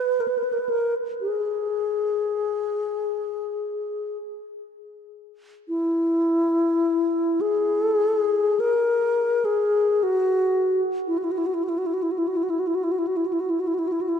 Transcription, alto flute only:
Already playing: B4
0.20 A#4
0.28 B4
0.38 A#4
0.44 B4
0.53 A#4
0.59 B4
0.69 A#4
1.21 G#4
5.68 E4
7.41 G#4
7.83 A4
7.95 G#4
8.07 A4
8.19 G#4
8.60 A#4
9.45 G#4
10.03 F#4
11.07 E4
11.18 F#4
11.24 E4
11.31 F#4
11.38 E4
11.46 F#4
11.54 E4
11.63 F#4
11.69 E4
11.78 F#4
11.86 E4
11.94 F#4
12.03 E4
12.11 F#4
12.18 E4
12.28 F#4
12.37 E4
12.43 F#4
12.50 E4
12.59 F#4
12.67 E4
12.75 F#4
12.84 E4
12.92 F#4
12.98 E4
13.07 F#4
13.17 E4
13.26 F#4
13.33 E4
13.40 F#4
13.50 E4
13.60 F#4
13.67 E4
13.74 F#4
13.79 E4
13.88 F#4
13.92 E4
14.01 F#4
14.09 E4

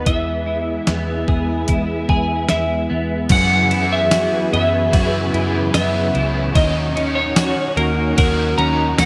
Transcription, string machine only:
0.07 G#3 B3 E4
3.31 F#3 C#4 E4 G#4 B4
6.55 D#4 F#4

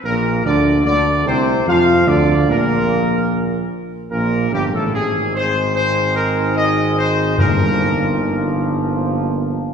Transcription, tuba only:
0.03 A#1
0.44 D2
0.85 D2
1.26 C2
1.66 F2
2.07 D2
2.49 A#1
4.12 A#1
4.52 G1
4.73 A1
4.94 G#1
7.37 G1

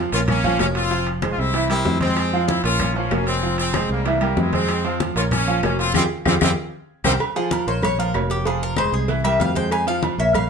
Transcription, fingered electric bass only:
0.12 A#1
0.59 F1
1.38 C2
1.85 F2
2.64 A#1
3.11 F1
3.89 C2
4.37 F2
5.16 A#1
5.63 F1
5.94 F2
6.26 F2
6.42 F2
7.04 C2
7.67 A#1
8.14 F1
8.93 C2
9.40 F2
10.18 A#1

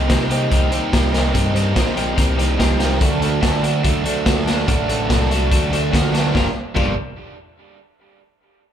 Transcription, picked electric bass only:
0.10 C3
0.51 C2
0.93 C2
1.35 G2
1.76 A#1
2.17 C2
2.60 C2
3.01 D2
3.43 D3
3.85 D2
4.26 D2
4.68 A1
5.10 C2
5.52 D2
5.93 D2
6.35 G1
6.76 G1

